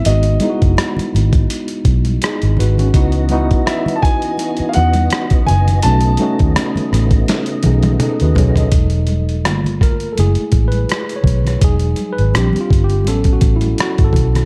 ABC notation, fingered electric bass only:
X:1
M:4/4
L:1/16
Q:"Swing 16ths" 1/4=83
K:E
V:1 name="Fingered electric bass" clef=bass
G,,,2 z F,,, z2 G,,,2 z2 B,,,2 z G,,, G,,,2 | C,,4 z6 E,,2 z2 F,,,2 | B,,,2 z D,, z2 A,,,2 z2 B,,,2 z D,, B,,,2 | E,,,4 =G,,,4 F,,, z A,,,2 z2 B,,,2 |
E,,,2 z G,,, ^A,,, z =G,,,2 =A,,,2 A,,,2 z ^G,,, B,,,2 |]